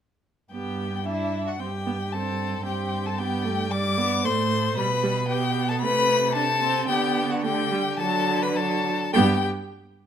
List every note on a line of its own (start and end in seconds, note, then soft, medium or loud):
0.52 1.56 G2 soft
0.52 1.03 B3 soft
0.52 1.03 G4 soft
0.52 1.07 G5 medium
1.06 1.59 D4 soft
1.06 1.45 E4 medium
1.06 1.49 E5 medium
1.46 1.52 F#4 soft
1.46 1.61 F#5 medium
1.60 2.64 G2 soft
1.60 1.68 C4 soft
1.60 2.16 G4 medium
1.60 2.14 G5 medium
1.86 1.94 B3 soft
2.13 2.65 C4 soft
2.13 2.65 A4 medium
2.13 2.65 A5 medium
2.65 4.27 G2 medium
2.65 3.21 C4 soft
2.65 3.07 G4 medium
2.65 3.08 G5 medium
3.06 3.20 A4 medium
3.06 3.20 A5 medium
3.18 3.47 B3 medium
3.18 3.71 G4 medium
3.18 3.73 G5 medium
3.45 3.73 A3 medium
3.71 3.99 G3 medium
3.71 4.24 D5 medium
3.71 4.27 D6 medium
3.98 4.26 B3 medium
4.25 4.77 A2 medium
4.25 4.77 A3 medium
4.25 4.79 C5 medium
4.25 4.77 C6 medium
4.77 5.85 B2 medium
4.77 4.86 G3 medium
4.77 5.32 B4 medium
4.77 5.28 B5 medium
5.03 5.11 G3 medium
5.29 5.84 B3 medium
5.29 5.69 G4 medium
5.29 5.70 G5 medium
5.69 5.75 A4 medium
5.69 5.81 A5 medium
5.82 6.89 C3 medium
5.82 6.34 A3 medium
5.82 6.35 B4 medium
5.82 6.35 B5 loud
6.35 6.43 D4 medium
6.35 6.88 A4 medium
6.35 6.87 A5 loud
6.62 6.91 C4 medium
6.88 7.98 D3 medium
6.88 7.45 B3 medium
6.88 7.32 G4 medium
6.88 7.32 G5 medium
7.30 7.43 F#4 medium
7.30 7.43 F#5 medium
7.43 7.71 A3 medium
7.43 8.01 G4 medium
7.43 7.99 G5 medium
7.71 7.79 G3 medium
7.99 8.92 D3 medium
7.99 8.55 F#3 medium
7.99 8.43 A4 medium
7.99 8.44 A5 loud
8.42 8.58 B4 medium
8.42 8.58 B5 medium
8.56 8.92 F#3 medium
8.56 9.13 A4 medium
8.56 9.13 A5 medium
9.13 9.46 G2 medium
9.13 9.45 B3 medium
9.13 9.45 G4 medium
9.13 9.45 G5 medium